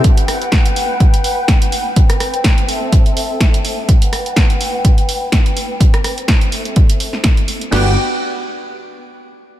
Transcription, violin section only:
0.04 1.94 B4 medium
0.04 1.94 F#5 medium
0.04 1.94 G5 medium
1.97 3.87 C4 medium
1.97 2.68 B4 medium
1.97 2.68 G5 medium
2.68 3.87 A4 medium
2.68 3.87 E5 medium
3.89 6.50 B4 medium
3.89 5.79 F#5 medium
3.89 6.50 G5 medium
5.81 7.71 C4 medium
6.52 7.71 A4 medium
6.52 7.71 E5 medium
7.72 7.95 F#4 medium
7.72 7.95 B4 medium
7.72 7.95 G5 medium

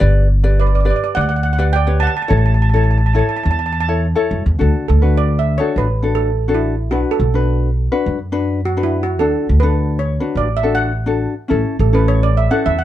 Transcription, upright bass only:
0.01 0.90 G1 loud
1.17 2.06 D2 medium
2.31 3.20 A1 medium
3.45 4.12 E2 medium
4.31 4.45 F#2 medium
4.46 4.59 E2 medium
4.61 4.72 D2 medium
4.89 5.56 D2 medium
5.76 6.91 A1 medium
6.91 7.03 B1 medium
7.19 7.87 B1 medium
8.06 9.21 F#2 medium
9.21 9.32 D2 medium
9.49 10.17 D2 medium
10.35 11.25 A1 medium
11.51 11.62 A1 medium
11.79 12.46 A1 medium
12.66 12.84 E2 medium

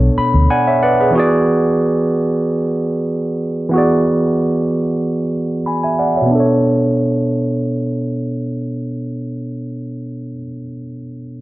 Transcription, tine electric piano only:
0.00 1.08 B2 medium
0.00 1.09 B3 medium
0.00 1.10 D4 medium
0.00 0.47 A4 medium
0.00 0.48 C#5 medium
0.18 0.47 B5 medium
0.50 0.66 D5 soft
0.50 0.66 F#5 medium
0.50 0.80 G#5 medium
0.67 0.81 C#5 soft
0.67 0.81 E5 medium
0.83 0.99 B4 soft
0.83 0.98 D5 medium
0.83 1.12 F#5 medium
1.00 1.16 G#4 soft
1.00 1.30 B4 medium
1.11 3.66 E3 medium
1.11 3.67 B3 medium
1.15 3.68 F#4 medium
1.15 3.69 G#4 medium
1.19 3.70 D5 medium
3.69 5.60 E3 medium
3.69 5.61 B3 medium
3.74 5.62 F#4 medium
3.74 5.63 G#4 medium
3.78 5.33 D5 medium
5.66 5.82 G#5 soft
5.66 5.82 B5 soft
5.83 5.98 E5 soft
5.83 5.97 G#5 medium
5.99 6.15 D5 soft
5.99 6.14 F#5 medium
6.16 6.39 C#5 soft
6.16 6.46 E5 soft
6.22 10.30 B2 medium
6.26 10.32 B3 medium
6.31 10.34 D4 medium
6.35 10.36 A4 medium
6.40 10.39 C#5 medium

